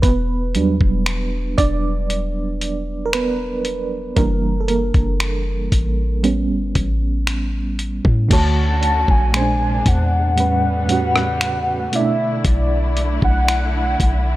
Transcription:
0.02 808-style bass E1, fm electric piano B3 B4, kick, closed hi-hat
0.55 808-style bass E2, fm electric piano F#3 G3 D4, closed hi-hat
0.81 808-style bass E1, kick
1.06 finger snap, closed hi-hat
1.58 808-style bass E1, fm electric piano D4 D5, kick, closed hi-hat
2.10 closed hi-hat
2.61 closed hi-hat
3.06 fm electric piano A#4
3.13 fm electric piano B3 B4, finger snap, closed hi-hat
3.65 closed hi-hat
4.16 808-style bass F#1, fm electric piano E3 G3 A#3 D4 A#4, kick, closed hi-hat
4.61 fm electric piano A4
4.68 fm electric piano A#3 A#4, closed hi-hat
4.94 808-style bass F#1, kick, closed hi-hat
5.20 finger snap, closed hi-hat
5.72 808-style bass A1, kick, closed hi-hat
6.23 fm electric piano G3 B3 C#4, closed hi-hat
6.50 808-style bass G1
6.75 808-style bass A1, kick, closed hi-hat
7.27 finger snap, closed hi-hat
7.79 closed hi-hat
8.05 808-style bass A2, kick
8.29 808-style bass D2, fm electric piano D3 A3 F#4, string section D3 A3 C#4 F#4, soft synth lead A5, kick, closed hi-hat, crash
8.33 fm electric piano C#5
8.83 closed hi-hat
9.08 808-style bass A#1, soft synth lead G#5, kick
9.32 fm electric piano A#2 G#3 C#4, string section C3 G#3 A#3 D4, finger snap, closed hi-hat
9.37 fm electric piano C5
9.42 fm electric piano D4
9.86 808-style bass E2, soft synth lead F#5, kick, closed hi-hat
10.36 fm electric piano A2 G3 C#4, string section C#3 G3 A3 B3, closed hi-hat
10.40 fm electric piano B4
10.87 fm electric piano A2 G3 C#4, closed hi-hat
10.92 fm electric piano F#4
11.16 cross-stick
11.41 finger snap, closed hi-hat
11.91 fm electric piano B2 A3 C#4 E4, string section D3 D4 E4, closed hi-hat
11.95 fm electric piano D5, soft synth lead E5
11.99 fm electric piano D4
12.45 808-style bass B1, soft synth lead D5, kick, closed hi-hat
12.97 closed hi-hat
13.22 808-style bass B1, soft synth lead F#5, kick
13.48 finger snap, closed hi-hat
14.00 808-style bass B1, kick, closed hi-hat

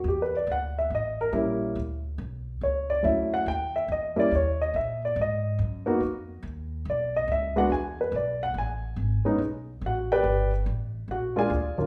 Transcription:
0.04 upright bass E2
0.08 grand piano G4
0.22 grand piano B4
0.37 grand piano D5
0.47 upright bass D2
0.52 grand piano F#5
0.79 grand piano E5
0.90 upright bass A1
0.95 grand piano D#5
1.21 grand piano A#4
1.32 upright bass A#1, grand piano G3 A#3 C#4 E4
1.75 upright bass D2
2.18 upright bass B1
2.61 upright bass C#2, grand piano C#5
2.90 grand piano D5
3.03 upright bass D2, grand piano F#3 A3 C#4 E4 E5
3.34 grand piano F#5
3.46 upright bass D#2, grand piano G5
3.76 grand piano E5
3.88 upright bass E2, grand piano D#5
4.16 grand piano G3 A#3 C#4 E4 D5
4.31 upright bass D#2, grand piano C#5
4.62 grand piano D#5
4.74 upright bass A#2, grand piano E5
5.05 grand piano D5
5.16 upright bass G#2
5.21 grand piano D#5
5.59 upright bass F#2
5.86 grand piano A#3 B3 D#4 F#4
6.00 upright bass F2
6.43 upright bass D#2
6.85 upright bass B1
6.90 grand piano D5
7.16 grand piano D#5
7.28 upright bass C#2
7.32 grand piano E5
7.56 grand piano G#3 B3 D4 F#4 F#5
7.70 upright bass E2, grand piano G#5
8.01 grand piano B4
8.12 upright bass B1
8.16 grand piano D5
8.43 grand piano F#5
8.54 upright bass A1
8.58 grand piano G#5
8.96 upright bass G#1
9.24 grand piano G#3 B3 C#4 D#4, muted upright bass stroke
9.38 upright bass B1
9.81 upright bass A1
9.86 grand piano F#4 F#5
10.12 grand piano G4 B4 D5 G5
10.23 upright bass G1
10.66 upright bass A1
11.08 upright bass A#1, grand piano F#4 F#5
11.36 grand piano G#3 A#3 D4 F4 G#4 D5 F5 G#5
11.50 upright bass D2
11.77 grand piano D#2 F#3 A#3 C#4 F4, muted upright bass stroke

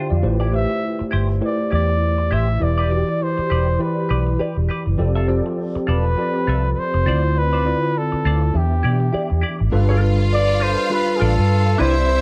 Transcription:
Already playing: tine electric piano D3 D4 E4 F4 G4 C5 D5 E5 F5 G5 A5
0.10 fingered electric bass F2, tine electric piano F4 D5, muted clean electric guitar stroke
0.22 fingered electric bass A1, tine electric piano A3 E4 G4 B4 C5, muted clean electric guitar stroke
0.40 clean electric guitar E4 G4 D5
0.52 tine electric piano A3 E4 G4 B4 C5, flugelhorn E5, muted clean electric guitar stroke
0.70 muted clean electric guitar stroke
0.99 muted clean electric guitar stroke, muted fingered electric bass stroke
1.11 fingered electric bass G1, clean electric guitar E4 G4 C5
1.29 muted clean electric guitar stroke
1.41 tine electric piano A3 E4 G4 B4 C5, flugelhorn D5, muted clean electric guitar stroke
1.71 fingered electric bass E2, clean electric guitar E4 G4 D5, flugelhorn D5
1.88 muted clean electric guitar stroke
2.18 muted clean electric guitar stroke
2.31 fingered electric bass A1, clean electric guitar E4 G4 C5, flugelhorn E5
2.48 muted clean electric guitar stroke
2.60 fingered electric bass E1, tine electric piano E3 E4 G4 B4 D5, flugelhorn D5, muted clean electric guitar stroke
2.78 clean electric guitar G4 B4 D5
2.89 tine electric piano E3 E4 F#4 D5, muted clean electric guitar stroke
2.97 tine electric piano G4
3.07 muted clean electric guitar stroke
3.23 flugelhorn C5
3.38 muted clean electric guitar stroke, muted fingered electric bass stroke
3.50 fingered electric bass E1, clean electric guitar G4 B4 D5
3.68 muted clean electric guitar stroke
3.79 tine electric piano E3 E4 G4 B4 D5, flugelhorn B4, muted clean electric guitar stroke
4.09 fingered electric bass B1, clean electric guitar G4 B4 D5
4.27 muted clean electric guitar stroke
4.39 clean electric guitar G4 B4 D5
4.57 fingered electric bass E1, muted clean electric guitar stroke
4.69 clean electric guitar G4 B4 D5
4.86 fingered electric bass F#1, muted clean electric guitar stroke
4.98 fingered electric bass F1, tine electric piano F3 C4 G4 A4 D5, muted clean electric guitar stroke
5.15 clean electric guitar F4 A4 E5
5.27 tine electric piano F3 C4 G4 A4 D5, muted clean electric guitar stroke
5.46 muted clean electric guitar stroke
5.75 muted clean electric guitar stroke, muted fingered electric bass stroke
5.87 fingered electric bass E1, clean electric guitar F4 A4 D5, flugelhorn B4
6.05 muted clean electric guitar stroke
6.17 tine electric piano F3 C4 G4 A4 D5, muted clean electric guitar stroke
6.47 fingered electric bass C2, clean electric guitar F4 A4 E5
6.65 muted clean electric guitar stroke
6.73 flugelhorn B4
6.79 flugelhorn C5
6.94 fingered electric bass F1, muted clean electric guitar stroke
7.06 fingered electric bass D2, tine electric piano D3 C4 E4 F4 D5, clean electric guitar F4 C5 D5
7.24 muted clean electric guitar stroke
7.36 flugelhorn B4, muted clean electric guitar stroke
7.53 clean electric guitar F4 C5 D5
7.64 tine electric piano D3 C4 E4 F4 D5, muted clean electric guitar stroke
7.83 muted clean electric guitar stroke
7.98 flugelhorn A4
8.12 muted clean electric guitar stroke, muted fingered electric bass stroke
8.25 fingered electric bass D2, clean electric guitar F4 C5 D5
8.42 muted clean electric guitar stroke
8.54 fingered electric bass E2, tine electric piano E3 B3 D4 G4 E5, flugelhorn G4, muted clean electric guitar stroke
8.83 fingered electric bass B2, clean electric guitar E4 G4 D5
9.00 muted clean electric guitar stroke
9.13 clean electric guitar E4 G4 D5, muted fingered electric bass stroke
9.30 fingered electric bass E2, muted clean electric guitar stroke
9.41 clean electric guitar E4 G4 D5
9.59 fingered electric bass G#1, muted clean electric guitar stroke
9.72 fingered electric bass G1, tine electric piano G3 D4 F4 A4 B4, french horn section G3 D4 F4 A4 B4, string section F4 F5, muted clean electric guitar stroke
9.89 clean electric guitar F4 A4 D5
10.02 muted clean electric guitar stroke
10.19 muted clean electric guitar stroke
10.34 flugelhorn D5
10.48 muted clean electric guitar stroke
10.60 clean electric guitar F4 A4 B4, flugelhorn C5
10.78 muted clean electric guitar stroke
10.90 tine electric piano G3 D4 F4 A4 B4, flugelhorn B4, muted clean electric guitar stroke
11.16 clean electric guitar F4, flugelhorn G#4
11.21 fingered electric bass A1, clean electric guitar A4 D5, flugelhorn A4
11.37 fingered electric bass G2, muted clean electric guitar stroke
11.67 muted clean electric guitar stroke
11.78 fingered electric bass C2, tine electric piano C3 C4 E4 C5 D5, french horn section C3 G3 C4 E4, clean electric guitar D4 E4 B4, string section E4 E5, flugelhorn C5
11.95 muted clean electric guitar stroke
12.08 muted clean electric guitar stroke

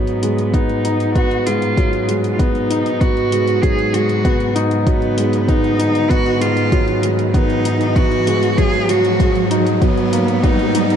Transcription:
Already playing: cello section G#2, felt piano F#3, cello B3, riser
0.07 closed hi-hat
0.23 felt piano G#3, closed hi-hat
0.38 closed hi-hat
0.54 felt piano B3, cello D#4, kick, closed hi-hat
0.69 closed hi-hat
0.85 felt piano D#4, closed hi-hat
1.00 closed hi-hat
1.15 felt piano B3, cello F#4, kick, closed hi-hat
1.31 closed hi-hat
1.46 felt piano G#3, cello F4, closed hi-hat
1.62 closed hi-hat
1.77 felt piano F#3, kick, closed hi-hat
1.93 closed hi-hat
2.08 felt piano G#3, closed hi-hat
2.24 closed hi-hat
2.32 cello F4
2.39 felt piano B3, cello D#4, kick, closed hi-hat
2.55 closed hi-hat
2.70 felt piano D#4, closed hi-hat
2.86 closed hi-hat
3.01 felt piano B3, cello F#4, kick, closed hi-hat
3.17 closed hi-hat
3.32 felt piano G#3, closed hi-hat
3.48 closed hi-hat
3.62 felt piano F#3, cello G#4, kick, closed hi-hat
3.79 closed hi-hat
3.94 felt piano G#3, cello F#4, closed hi-hat
4.09 closed hi-hat
4.25 felt piano B3, kick, closed hi-hat
4.40 closed hi-hat
4.55 felt piano D#4, closed hi-hat
4.71 closed hi-hat
4.87 felt piano F#3, cello B3, kick, closed hi-hat
5.02 closed hi-hat
5.17 felt piano G#3, closed hi-hat
5.33 closed hi-hat
5.48 felt piano B3, cello D#4, kick, closed hi-hat
5.64 closed hi-hat
5.79 felt piano D#4, closed hi-hat
5.95 closed hi-hat
6.10 felt piano B3, cello F#4, kick, closed hi-hat
6.26 closed hi-hat
6.41 felt piano G#3, cello F4, closed hi-hat
6.57 closed hi-hat
6.72 felt piano F#3, kick, closed hi-hat
6.88 closed hi-hat
7.03 felt piano G#3, closed hi-hat
7.19 closed hi-hat
7.34 felt piano B3, cello D#4, kick, closed hi-hat
7.50 closed hi-hat
7.65 felt piano D#4, closed hi-hat
7.81 closed hi-hat
7.96 felt piano B3, cello F#4, kick, closed hi-hat
8.12 closed hi-hat
8.27 felt piano G#3, closed hi-hat
8.43 closed hi-hat
8.58 felt piano F#3, cello G#4, kick, closed hi-hat
8.74 closed hi-hat
8.89 felt piano F#3, cello F#4, closed hi-hat
9.05 closed hi-hat
9.20 felt piano G#3, kick, closed hi-hat
9.35 closed hi-hat
9.51 felt piano D#4, closed hi-hat
9.67 closed hi-hat
9.82 cello section G#2, felt piano F#3, cello B3, kick, closed hi-hat
9.97 closed hi-hat
10.13 felt piano A#3, closed hi-hat
10.28 closed hi-hat
10.43 felt piano B3, cello D#4, kick, closed hi-hat
10.59 closed hi-hat
10.75 felt piano D#4, closed hi-hat
10.90 closed hi-hat

